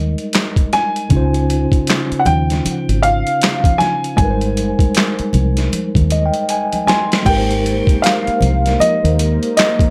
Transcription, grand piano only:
Already playing: G5
0.73 G#5
2.19 F#5
2.26 G5
3.02 F5
3.78 G#5
4.17 G#5
6.87 G#5
7.26 G5
8.02 F5
8.80 D#5
9.57 D#5

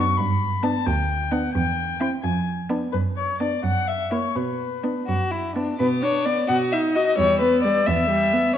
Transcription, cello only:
0.19 G2
0.87 D2
1.55 E2
2.23 F2
2.93 F#2
3.63 F#2
4.36 B2
5.08 F#2
5.80 B2
6.49 B2
7.19 E2
7.88 E2

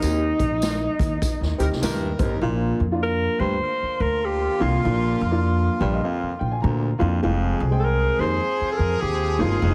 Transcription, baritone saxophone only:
0.02 D#2
1.82 G2
2.19 D#2
2.41 A#2
3.39 G2
4.60 F2
4.83 A#2
5.81 G2
6.04 F2
6.63 D2
6.99 F2
7.22 F2
8.19 D#2
9.39 D#2
9.62 F2

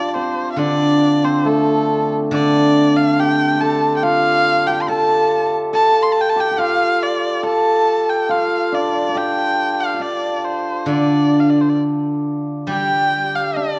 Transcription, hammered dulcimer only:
Already playing: D4 F4 G4
0.15 C4
0.59 D4
1.24 C4
1.45 A3
2.33 D4
3.19 G4
3.55 C5
3.62 A4
4.03 F4
4.66 G4
4.88 A4
5.73 A4
6.36 G4
6.51 G4
6.58 F4
7.43 A4
8.29 F4
8.72 D4
9.09 A4
9.15 G4
9.94 F4
10.00 D4
10.87 D4
12.69 G4
13.56 D4

